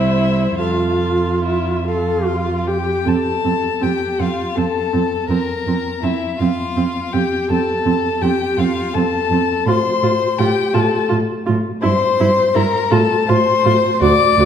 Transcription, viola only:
0.00 0.60 E4 soft
0.61 1.77 F4 soft
1.88 2.28 A4 soft
2.27 2.69 F4 soft
2.68 3.06 G4 soft
3.06 3.14 C4 soft
3.44 3.52 C4 soft
3.81 3.89 C4 soft
4.20 4.28 C4 soft
4.57 4.65 C4 soft
4.93 5.01 C4 soft
5.30 5.38 C4 soft
5.68 5.76 C4 soft
6.04 6.12 C4 soft
6.42 6.50 C4 soft
6.77 6.85 C4 soft
7.14 7.22 C4 soft
7.51 7.59 C4 soft
7.86 7.94 C4 soft
8.24 8.32 C4 soft
8.60 8.68 C4 soft
8.97 9.05 C4 soft
9.33 9.41 C4 soft
9.67 9.75 F4 soft
10.03 10.11 F4 soft
10.39 10.47 F4 soft
10.74 10.82 F4 medium
11.09 11.17 F4 soft
11.46 11.54 F4 soft
11.82 11.90 E4 medium
12.20 12.28 E4 medium
12.55 12.63 E4 medium
12.91 12.99 F4 medium
13.29 13.37 F4 medium
13.65 13.73 F4 soft
14.00 14.08 F#4 medium
14.39 14.45 F#4 medium

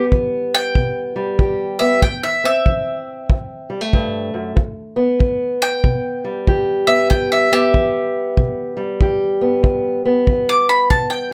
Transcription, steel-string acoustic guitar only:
0.00 1.15 G3 medium
0.00 1.79 B3 medium
0.13 0.71 E3 medium
0.76 1.35 B2 medium
1.16 2.03 G3 medium
1.38 1.98 E3 medium
1.38 2.00 G4 medium
1.80 2.03 B3 medium
2.03 2.62 A2 medium
2.44 4.55 C4 medium
2.67 3.26 E3 medium
3.30 3.89 E2 medium
3.70 3.81 G3 medium
3.81 4.56 A3 medium
3.93 4.33 G2 medium
4.34 4.56 F#2 medium
4.56 5.15 E2 medium
4.96 6.87 B3 medium
5.19 5.78 E3 medium
5.84 6.43 B2 medium
6.24 8.76 G3 medium
6.47 7.06 E3 medium
6.47 9.02 G4 medium
6.88 7.51 B3 medium
7.11 7.69 E2 medium
7.52 9.40 B3 medium
7.74 8.33 E3 medium
8.37 8.96 B2 medium
8.77 11.31 G3 medium
9.01 9.60 E3 medium
9.01 11.33 G4 medium
9.41 10.04 B3 medium
9.63 10.22 E2 medium
10.05 11.33 B3 medium
10.29 10.87 E3 medium
10.92 11.33 B2 medium

